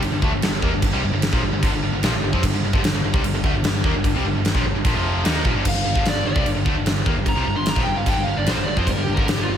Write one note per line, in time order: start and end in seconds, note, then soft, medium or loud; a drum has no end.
0.02 0.11 G1 medium
0.02 0.12 G2 medium
0.02 0.13 D3 medium
0.02 crash medium
0.12 0.21 G1 medium
0.12 0.23 G2 medium
0.12 0.22 D3 medium
0.22 0.32 D2 loud
0.22 0.32 D3 medium
0.22 0.32 A3 loud
0.22 kick loud
0.32 0.42 G1 medium
0.32 0.42 G2 medium
0.32 0.43 D3 medium
0.42 0.61 G1 medium
0.42 0.59 G2 medium
0.42 0.59 D3 medium
0.42 snare loud
0.42 crash medium
0.62 0.72 D#2 medium
0.62 0.72 D#3 loud
0.62 0.73 A#3 loud
0.62 kick loud
0.72 0.82 G1 medium
0.72 0.83 G2 medium
0.72 0.83 D3 medium
0.82 0.92 G1 medium
0.82 0.93 G2 medium
0.82 0.93 D3 medium
0.82 kick medium
0.82 crash medium
0.93 1.02 C2 medium
0.93 1.02 C3 medium
0.93 1.02 G3 loud
1.03 1.12 G1 medium
1.03 1.12 G2 medium
1.03 1.12 D3 medium
1.12 1.31 G1 medium
1.12 1.29 G2 medium
1.12 1.29 D3 medium
1.22 snare loud
1.22 crash medium
1.33 1.42 A#1 loud
1.33 1.42 A#2 medium
1.33 1.43 F3 medium
1.33 kick loud
1.42 1.52 G1 medium
1.42 1.52 G2 medium
1.42 1.52 D3 medium
1.53 1.62 G1 medium
1.53 1.62 G2 medium
1.53 1.63 D3 medium
1.63 1.72 G1 medium
1.63 1.72 G2 loud
1.63 1.73 D3 loud
1.63 kick loud
1.63 crash medium
1.73 1.82 G1 medium
1.73 1.83 G2 medium
1.73 1.83 D3 medium
1.82 1.92 G1 medium
1.82 1.93 G2 medium
1.82 1.94 D3 medium
1.92 2.02 G1 medium
1.92 2.04 G2 medium
1.92 2.04 D3 medium
2.03 2.12 A#1 loud
2.03 2.13 A#2 medium
2.03 2.14 F3 loud
2.03 snare loud
2.03 crash medium
2.12 2.22 G1 medium
2.12 2.23 G2 medium
2.12 2.24 D3 medium
2.23 2.32 G1 medium
2.23 2.34 G2 medium
2.23 2.34 D3 medium
2.33 2.42 F2 medium
2.33 2.43 F3 loud
2.33 2.44 C4 loud
2.33 kick loud
2.43 2.52 G1 medium
2.43 2.53 G2 medium
2.43 2.53 D3 medium
2.43 kick loud
2.43 crash medium
2.52 2.62 G1 medium
2.52 2.63 G2 medium
2.52 2.63 D3 medium
2.62 2.72 G1 medium
2.62 2.72 G2 medium
2.62 2.73 D3 medium
2.73 2.81 G1 loud
2.73 2.83 G2 loud
2.73 2.83 D3 loud
2.73 kick loud
2.82 2.92 G1 medium
2.82 2.93 G2 medium
2.82 2.94 D3 medium
2.82 snare loud
2.82 crash medium
2.93 3.02 G1 medium
2.93 3.04 G2 medium
2.93 3.04 D3 medium
3.03 3.12 G1 medium
3.03 3.14 G2 medium
3.03 3.14 D3 medium
3.14 3.22 C2 medium
3.14 3.23 C3 medium
3.14 3.24 G3 loud
3.14 kick loud
3.22 3.32 G1 medium
3.22 3.33 G2 medium
3.22 3.34 D3 medium
3.22 crash medium
3.33 3.42 G1 medium
3.33 3.44 G2 medium
3.33 3.43 D3 medium
3.44 3.53 D2 loud
3.44 3.53 D3 loud
3.44 3.54 A3 loud
3.44 kick loud
3.53 3.62 G1 medium
3.53 3.64 G2 medium
3.53 3.64 D3 medium
3.63 3.82 G1 medium
3.63 3.80 G2 medium
3.63 3.81 D3 medium
3.63 snare loud
3.63 crash medium
3.84 3.92 D#2 loud
3.84 3.94 D#3 loud
3.84 3.94 A#3 loud
3.84 kick loud
3.93 4.03 G1 medium
3.93 4.05 G2 medium
3.93 4.05 D3 medium
4.04 4.13 G1 medium
4.04 4.15 G2 medium
4.04 4.15 D3 medium
4.04 kick loud
4.04 crash medium
4.14 4.23 C2 medium
4.14 4.25 C3 medium
4.14 4.25 G3 loud
4.23 4.33 G1 medium
4.23 4.36 G2 medium
4.27 4.36 D3 medium
4.34 4.53 G1 medium
4.34 4.52 G2 medium
4.34 4.52 D3 medium
4.45 snare loud
4.45 crash medium
4.55 4.64 A#1 medium
4.55 4.65 A#2 medium
4.55 4.65 F3 loud
4.55 kick loud
4.64 4.73 G1 medium
4.64 4.75 G2 medium
4.64 4.75 D3 medium
4.74 4.84 G1 medium
4.74 4.85 G2 medium
4.74 4.85 D3 medium
4.85 4.94 A#1 loud
4.85 4.95 A#2 medium
4.85 4.95 F3 loud
4.85 kick loud
4.85 crash medium
4.94 5.23 F1 medium
4.94 5.25 F2 medium
4.94 5.25 C3 loud
4.94 5.25 F3 loud
5.24 5.43 D#2 medium
5.24 5.45 D#3 medium
5.24 5.45 A#3 loud
5.24 5.45 D#4 loud
5.24 snare loud
5.24 crash medium
5.45 5.54 A#1 medium
5.45 5.55 A#2 loud
5.45 5.55 F3 loud
5.45 kick loud
5.54 5.64 G1 medium
5.54 5.65 G2 medium
5.54 5.65 D3 loud
5.65 5.74 G1 medium
5.65 5.73 G2 medium
5.65 5.74 D3 medium
5.65 5.87 F5 medium
5.65 kick medium
5.65 crash loud
5.65 crash medium
5.74 5.84 G1 medium
5.74 5.84 G2 medium
5.74 5.85 D3 medium
5.85 5.94 G1 medium
5.85 5.94 G2 medium
5.85 5.95 D3 medium
5.85 6.06 F5 medium
5.95 6.04 G1 loud
5.95 6.04 G2 medium
5.95 6.05 D3 medium
5.95 kick loud
6.05 6.15 G1 medium
6.05 6.14 G2 medium
6.05 6.14 D3 medium
6.05 6.26 D5 medium
6.05 snare loud
6.05 crash medium
6.15 6.24 G1 medium
6.15 6.24 G2 medium
6.15 6.25 D3 medium
6.25 6.34 G1 medium
6.25 6.36 G2 medium
6.25 6.34 D3 medium
6.25 6.46 D5 medium
6.34 6.44 C2 medium
6.34 6.44 C3 medium
6.34 6.45 G3 loud
6.34 kick loud
6.45 6.55 G1 medium
6.45 6.55 G2 medium
6.45 6.56 D3 medium
6.45 crash medium
6.55 6.65 G1 medium
6.55 6.66 G2 medium
6.55 6.66 D3 medium
6.66 6.74 D2 loud
6.66 6.76 D3 medium
6.66 6.76 A3 loud
6.66 kick loud
6.75 6.84 G1 medium
6.75 6.86 G2 medium
6.75 6.86 D3 medium
6.85 7.04 G1 medium
6.85 7.03 G2 medium
6.85 7.03 D3 medium
6.85 snare loud
6.85 crash medium
7.06 7.15 D#2 medium
7.06 7.16 D#3 medium
7.06 7.16 A#3 loud
7.06 kick loud
7.16 7.25 G1 medium
7.16 7.26 G2 medium
7.16 7.26 D3 medium
7.26 7.35 G1 medium
7.26 7.37 G2 medium
7.26 7.36 D3 medium
7.26 7.54 A#5 medium
7.26 kick loud
7.26 crash medium
7.35 7.45 C2 medium
7.35 7.46 C3 medium
7.35 7.46 G3 medium
7.46 7.55 G1 medium
7.46 7.56 G2 medium
7.46 7.56 D3 medium
7.56 7.75 G1 medium
7.56 7.73 G2 medium
7.56 7.73 D3 medium
7.56 7.69 C6 medium
7.66 7.81 A#5 medium
7.66 snare loud
7.66 crash medium
7.76 7.85 A#1 loud
7.76 7.87 A#2 medium
7.76 7.87 F3 medium
7.76 kick loud
7.83 7.95 G1 medium
7.83 7.96 G2 medium
7.83 7.96 G5 medium
7.87 7.96 D3 medium
7.96 8.06 G1 medium
7.96 8.06 G2 medium
7.96 8.06 D3 medium
7.96 8.08 F5 medium
8.06 8.15 G1 loud
8.06 8.16 G2 medium
8.06 8.17 D3 loud
8.06 8.24 G5 medium
8.06 kick loud
8.06 crash medium
8.16 8.26 G1 medium
8.16 8.27 G2 medium
8.16 8.27 D3 medium
8.24 8.36 G1 medium
8.24 8.35 F5 medium
8.28 8.38 G2 medium
8.28 8.38 D3 medium
8.36 8.45 G1 medium
8.36 8.48 G2 medium
8.36 8.48 D3 medium
8.36 8.49 D5 medium
8.46 8.55 A#1 loud
8.46 8.57 A#2 medium
8.46 8.57 F3 loud
8.46 snare loud
8.46 crash medium
8.51 8.62 C5 medium
8.55 8.66 G1 medium
8.55 8.67 G2 medium
8.55 8.67 D3 medium
8.64 8.76 G1 medium
8.64 8.78 G2 medium
8.64 8.78 D3 medium
8.64 8.78 D5 medium
8.77 8.86 F2 loud
8.77 8.87 F3 loud
8.77 8.87 C4 medium
8.77 8.90 C5 medium
8.77 kick loud
8.87 8.96 G1 medium
8.87 8.97 G2 medium
8.87 8.98 D3 medium
8.87 9.02 A#4 medium
8.87 kick loud
8.87 crash medium
8.96 9.06 G1 medium
8.96 9.07 G2 medium
8.96 9.08 D3 medium
9.03 9.16 G1 medium
9.03 9.15 G4 medium
9.08 9.17 G2 medium
9.08 9.18 D3 medium
9.15 9.26 G1 medium
9.15 9.27 G2 medium
9.15 9.28 D3 loud
9.15 9.29 A#4 medium
9.15 kick loud
9.26 9.36 G1 medium
9.26 9.37 G2 medium
9.26 9.37 D3 medium
9.26 9.41 G4 medium
9.26 snare loud
9.26 crash medium
9.37 9.46 G1 medium
9.37 9.47 G2 medium
9.37 9.48 D3 medium
9.43 9.57 F4 medium
9.47 9.57 G1 medium
9.47 9.57 G2 medium
9.47 9.57 D3 medium